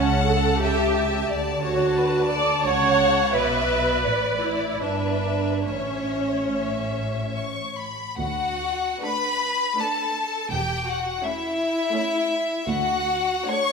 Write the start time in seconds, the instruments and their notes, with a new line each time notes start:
Already playing: double bass section C#2, cello section C#3, viola section C#4, violin section F#5 A5
0.29 viola section A4
0.63 viola section G4, violin section E5
0.97 violin section E5
1.30 double bass section D2, cello section D3, violin section D5 A5
1.64 viola section F#4, violin section C#5
1.98 violin section B4
2.31 violin section A4, viola section D5
2.65 double bass section C#2, cello section C#3, viola section C#5, violin section F#5
3.34 double bass section B1, cello section B2, viola section B4, violin section D5 E5
4.04 double bass section A1, cello section A2, violin section D5
4.42 viola section E4
4.82 double bass section G1, cello section G2, viola section D4, violin section B4 E5
5.65 double bass section A1, cello section A2, viola section C#4, violin section C#5 E5
6.52 violin section E5
7.35 violin section C#6
7.77 violin section B5
8.17 double bass section D2, cello section D2, violin section F#4 F#5
9.02 viola section A3 D4, violin section B4 B5
9.77 viola section A3 D4, violin section A4 A5
10.51 double bass section E1, cello section E2, violin section G4 G5
10.86 violin section F#4 F#5
11.21 viola section A3 C#4, violin section E4 E5
11.94 viola section A3 C#4
12.67 double bass section D2, cello section D2, violin section F#4 F#5
13.46 viola section A3 D4, violin section C#5 C#6